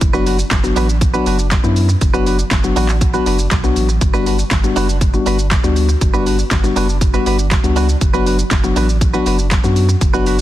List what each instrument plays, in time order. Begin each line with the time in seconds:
0.01 sub bass F#1, muted clean electric guitar stroke, kick, closed hi-hat, shaker
0.13 tine electric piano F#3 B3 D4 F#4, clean electric guitar D4 F#4 B4, shaker
0.26 clean electric guitar D4 F#4 B4, open hi-hat, shaker
0.39 muted clean electric guitar stroke, shaker
0.51 sub bass F#1, kick, snare, clap, closed hi-hat, shaker
0.64 tine electric piano F#3 B3 D4 F#4, muted clean electric guitar stroke, shaker
0.76 sub bass A1, clean electric guitar D4 F#4 B4, open hi-hat, shaker
0.89 muted clean electric guitar stroke, shaker
1.01 muted clean electric guitar stroke, kick, closed hi-hat, shaker
1.14 tine electric piano F#3 B3 D4 F#4, clean electric guitar D4 F#4 B4, shaker
1.26 sub bass F#1, clean electric guitar D4 F#4 B4, open hi-hat, shaker
1.39 muted clean electric guitar stroke, shaker
1.51 muted clean electric guitar stroke, kick, snare, clap, closed hi-hat, shaker
1.64 sub bass F#2, tine electric piano F#3 B3 D4 E4, muted clean electric guitar stroke, shaker
1.76 open hi-hat, shaker
1.89 muted clean electric guitar stroke, shaker
2.01 sub bass F#1, muted clean electric guitar stroke, kick, closed hi-hat, shaker
2.14 tine electric piano F#3 B3 D4 F#4, clean electric guitar D4 F#4 B4, shaker
2.26 clean electric guitar D4 F#4 B4, open hi-hat, shaker
2.39 muted clean electric guitar stroke, shaker
2.51 sub bass F#1, kick, snare, clap, closed hi-hat, shaker
2.64 tine electric piano F#3 B3 D4 F#4, muted clean electric guitar stroke, shaker
2.76 sub bass A1, clean electric guitar D4 F#4 B4, open hi-hat, shaker
2.89 muted clean electric guitar stroke, clap, shaker
3.01 muted clean electric guitar stroke, kick, closed hi-hat, shaker
3.14 tine electric piano F#3 B3 D4 F#4, clean electric guitar D4 F#4 B4, shaker
3.26 sub bass F#1, clean electric guitar D4 F#4 B4, open hi-hat, shaker
3.39 muted clean electric guitar stroke, shaker
3.51 sub bass B1, muted clean electric guitar stroke, kick, snare, clap, closed hi-hat, shaker
3.64 tine electric piano F#3 B3 D4 F#4, muted clean electric guitar stroke, shaker
3.76 sub bass A1, open hi-hat, shaker
3.89 muted clean electric guitar stroke, shaker
4.01 sub bass G1, muted clean electric guitar stroke, kick, closed hi-hat, shaker
4.14 tine electric piano G3 B3 D4 F#4, clean electric guitar D4 F#4 B4, shaker
4.26 clean electric guitar D4 F#4 B4, open hi-hat, shaker
4.39 muted clean electric guitar stroke, shaker
4.51 sub bass G1, kick, snare, clap, closed hi-hat, shaker
4.64 tine electric piano G3 B3 D4 F#4, muted clean electric guitar stroke, shaker
4.76 sub bass F#1, clean electric guitar D4 F#4 B4, open hi-hat, shaker
4.89 muted clean electric guitar stroke, shaker
5.01 kick, closed hi-hat, shaker
5.14 tine electric piano G3 B3 D4 F#4, muted clean electric guitar stroke, shaker
5.26 sub bass G1, clean electric guitar D4 F#4 B4, open hi-hat, shaker
5.39 muted clean electric guitar stroke, shaker
5.51 muted clean electric guitar stroke, kick, snare, clap, closed hi-hat, shaker
5.64 sub bass D2, tine electric piano G3 B3 D4 F#4, muted clean electric guitar stroke, shaker
5.76 open hi-hat, shaker
5.89 muted clean electric guitar stroke, shaker
6.01 sub bass G1, muted clean electric guitar stroke, kick, closed hi-hat, shaker
6.14 tine electric piano G3 B3 D4 F#4, clean electric guitar D4 F#4 B4, shaker
6.26 clean electric guitar D4 F#4 B4, open hi-hat, shaker
6.39 muted clean electric guitar stroke, shaker
6.51 sub bass G1, kick, snare, clap, closed hi-hat, shaker
6.63 tine electric piano G3 B3 D4 F#4, muted clean electric guitar stroke, shaker
6.76 sub bass F#1, clean electric guitar D4 F#4 B4, open hi-hat, shaker
6.89 muted clean electric guitar stroke, shaker
7.01 muted clean electric guitar stroke, kick, closed hi-hat, shaker
7.14 tine electric piano G3 B3 D4 F#4, clean electric guitar D4 F#4 B4, shaker
7.26 sub bass G1, clean electric guitar D4 F#4 B4, open hi-hat, shaker
7.39 muted clean electric guitar stroke, shaker
7.51 muted clean electric guitar stroke, kick, snare, clap, closed hi-hat, shaker
7.64 sub bass C#2, tine electric piano G3 B3 D4 F#4, muted clean electric guitar stroke, shaker
7.76 clean electric guitar D4 F#4 B4, open hi-hat, shaker
7.89 muted clean electric guitar stroke, shaker
8.01 sub bass F#1, muted clean electric guitar stroke, kick, closed hi-hat, shaker
8.14 tine electric piano F#3 B3 D4 F#4, clean electric guitar D4 F#4 B4, shaker
8.26 clean electric guitar D4 F#4 B4, open hi-hat, shaker
8.39 muted clean electric guitar stroke, shaker
8.51 sub bass F#1, kick, snare, clap, closed hi-hat, shaker
8.64 tine electric piano F#3 B3 D4 F#4, muted clean electric guitar stroke, shaker
8.76 sub bass A1, clean electric guitar D4 F#4 B4, open hi-hat, shaker
8.89 muted clean electric guitar stroke, shaker
9.01 muted clean electric guitar stroke, kick, closed hi-hat, shaker
9.14 tine electric piano F#3 B3 D4 F#4, clean electric guitar D4 F#4 B4, shaker
9.26 sub bass F#1, clean electric guitar D4 F#4 B4, open hi-hat, shaker
9.39 muted clean electric guitar stroke, shaker
9.51 muted clean electric guitar stroke, kick, snare, clap, closed hi-hat, shaker
9.64 sub bass F#2, tine electric piano F#3 B3 D4 F#4, muted clean electric guitar stroke, shaker
9.76 open hi-hat, shaker
9.89 muted clean electric guitar stroke, shaker
10.01 sub bass F#1, muted clean electric guitar stroke, kick, closed hi-hat, shaker
10.14 tine electric piano F#3 B3 D4 F#4, clean electric guitar D4 F#4 B4, shaker
10.26 clean electric guitar D4 F#4 B4, open hi-hat, shaker